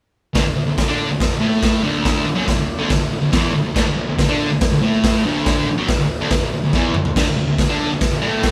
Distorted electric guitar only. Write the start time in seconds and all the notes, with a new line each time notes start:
0.34 D2 D3
0.44 D2
0.56 D2
0.67 D2
0.77 D2
0.88 D3 D4
1.08 D2
1.31 D2
1.40 A2 A3
1.83 D2 D3
2.26 muted distorted electric guitar stroke
2.35 F#2 F#3
2.46 D2
2.57 D2
2.78 D2 D3
2.89 D2
2.99 D2
3.11 D2
3.22 D2
3.32 E2 E3
3.54 D2
3.65 D2
3.75 D2 D3
3.87 D2
3.97 D2
4.08 D2
4.18 D2
4.28 D3 D4
4.50 D2
4.72 D2
4.82 A2 A3
5.25 D2 D3
5.67 muted distorted electric guitar stroke
5.77 F#2 F#3
5.89 D2
6.00 D2
6.20 D2 D3
6.30 D2
6.41 D2
6.52 D2
6.64 D2
6.74 E2 E3
6.95 D2
7.05 D2
7.16 D2 D3
7.27 D2
7.37 D2
7.47 D2
7.58 D2
7.69 D3 D4
7.92 D2
8.11 D2
8.21 A2 A3